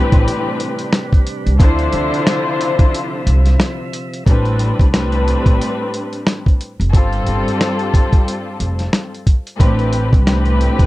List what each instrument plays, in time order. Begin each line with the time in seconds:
Already playing: string section A2 E3 C4 D4 G4 B4, tonewheel organ C3 G3 D4 B4
0.12 upright bass A1, kick, closed hi-hat
0.28 closed hi-hat
0.60 closed hi-hat
0.79 closed hi-hat
0.93 cross-stick, snare, closed hi-hat
1.13 kick, closed hi-hat
1.27 closed hi-hat
1.46 upright bass C2, closed hi-hat
1.60 upright bass D2, tonewheel organ C3 F3 E5, string section D3 D4 E4 F4 C5, kick, closed hi-hat
1.79 closed hi-hat
1.93 upright bass D2, closed hi-hat
2.14 closed hi-hat
2.27 cross-stick, snare, closed hi-hat
2.61 closed hi-hat
2.79 kick, closed hi-hat
2.94 closed hi-hat
3.27 upright bass C2, closed hi-hat
3.46 snare, closed hi-hat
3.60 cross-stick, snare, closed hi-hat
3.93 closed hi-hat
4.13 closed hi-hat
4.26 upright bass A1, string section A2 G3 C4 D4 B4, kick, closed hi-hat
4.45 closed hi-hat
4.59 closed hi-hat
4.79 upright bass C2, kick, closed hi-hat
4.92 string section A2 G3 C4 D4 B4, cross-stick, snare, closed hi-hat
5.12 closed hi-hat
5.28 closed hi-hat
5.46 upright bass A1, kick, closed hi-hat
5.61 closed hi-hat
5.94 closed hi-hat
6.13 closed hi-hat
6.27 cross-stick, snare, closed hi-hat
6.46 kick, closed hi-hat
6.61 closed hi-hat
6.80 upright bass F1, closed hi-hat
6.92 upright bass G1, string section G2 G3 C4 F4 A4, kick, closed hi-hat
7.13 closed hi-hat
7.27 upright bass G1, closed hi-hat
7.48 closed hi-hat
7.61 cross-stick, snare, closed hi-hat
7.79 closed hi-hat
7.94 kick, closed hi-hat
8.13 kick, closed hi-hat
8.28 closed hi-hat
8.60 upright bass F1, closed hi-hat
8.79 snare, closed hi-hat
8.93 cross-stick, snare, closed hi-hat
9.15 closed hi-hat
9.27 kick, closed hi-hat
9.47 closed hi-hat
9.58 upright bass A1, string section A2 E3 C4 D4 G4 B4, kick, closed hi-hat
9.79 closed hi-hat
9.93 closed hi-hat
10.13 upright bass C2, kick, closed hi-hat
10.25 string section A2 E3 C4 D4 G4 B4, cross-stick, snare, closed hi-hat
10.46 closed hi-hat
10.61 closed hi-hat
10.79 upright bass A1, kick, closed hi-hat